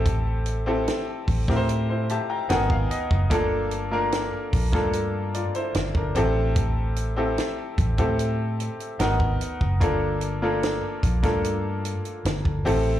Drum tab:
HH |x-x-x-o-x-x-x-x-|x-x-x-oxx-xxx-x-|x-x-x-xxx-xxx-x-|x-x-x-xxx-xxx-o-|
SD |----o--o----o---|----o--o----o---|----o-------o---|----o--o----o---|
BD |o-----oo-----o-o|o-----oo-----o--|o-----oo-----o-o|o-----oo-----o--|